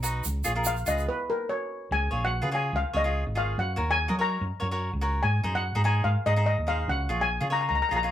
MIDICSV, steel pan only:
0, 0, Header, 1, 2, 480
1, 0, Start_track
1, 0, Tempo, 414651
1, 284, Time_signature, 4, 2, 24, 8
1, 9392, End_track
2, 0, Start_track
2, 0, Title_t, "Steel pan"
2, 0, Program_c, 0, 114
2, 771, Note_on_c, 0, 77, 104
2, 1016, Note_off_c, 0, 77, 0
2, 1017, Note_on_c, 0, 75, 89
2, 1256, Note_on_c, 0, 71, 94
2, 1258, Note_off_c, 0, 75, 0
2, 1498, Note_off_c, 0, 71, 0
2, 1502, Note_on_c, 0, 70, 86
2, 1730, Note_on_c, 0, 73, 83
2, 1741, Note_off_c, 0, 70, 0
2, 2175, Note_off_c, 0, 73, 0
2, 2225, Note_on_c, 0, 80, 96
2, 2594, Note_off_c, 0, 80, 0
2, 2601, Note_on_c, 0, 78, 95
2, 2950, Note_on_c, 0, 80, 87
2, 2951, Note_off_c, 0, 78, 0
2, 3186, Note_off_c, 0, 80, 0
2, 3193, Note_on_c, 0, 77, 93
2, 3404, Note_off_c, 0, 77, 0
2, 3434, Note_on_c, 0, 75, 97
2, 3868, Note_off_c, 0, 75, 0
2, 3906, Note_on_c, 0, 77, 99
2, 4144, Note_off_c, 0, 77, 0
2, 4156, Note_on_c, 0, 78, 92
2, 4484, Note_off_c, 0, 78, 0
2, 4522, Note_on_c, 0, 80, 113
2, 4872, Note_off_c, 0, 80, 0
2, 4876, Note_on_c, 0, 82, 100
2, 5536, Note_off_c, 0, 82, 0
2, 6050, Note_on_c, 0, 80, 95
2, 6427, Note_off_c, 0, 80, 0
2, 6427, Note_on_c, 0, 78, 99
2, 6750, Note_off_c, 0, 78, 0
2, 6773, Note_on_c, 0, 80, 88
2, 6993, Note_on_c, 0, 77, 93
2, 7017, Note_off_c, 0, 80, 0
2, 7247, Note_on_c, 0, 75, 95
2, 7248, Note_off_c, 0, 77, 0
2, 7466, Note_off_c, 0, 75, 0
2, 7480, Note_on_c, 0, 75, 92
2, 7731, Note_off_c, 0, 75, 0
2, 7733, Note_on_c, 0, 77, 102
2, 7977, Note_off_c, 0, 77, 0
2, 7981, Note_on_c, 0, 78, 93
2, 8350, Note_on_c, 0, 80, 109
2, 8351, Note_off_c, 0, 78, 0
2, 8671, Note_off_c, 0, 80, 0
2, 8711, Note_on_c, 0, 82, 95
2, 8784, Note_off_c, 0, 82, 0
2, 8810, Note_on_c, 0, 82, 67
2, 8874, Note_off_c, 0, 82, 0
2, 8900, Note_on_c, 0, 82, 80
2, 8960, Note_off_c, 0, 82, 0
2, 8975, Note_on_c, 0, 82, 75
2, 9040, Note_off_c, 0, 82, 0
2, 9054, Note_on_c, 0, 82, 87
2, 9119, Note_off_c, 0, 82, 0
2, 9133, Note_on_c, 0, 82, 73
2, 9207, Note_off_c, 0, 82, 0
2, 9221, Note_on_c, 0, 82, 91
2, 9299, Note_off_c, 0, 82, 0
2, 9392, End_track
0, 0, End_of_file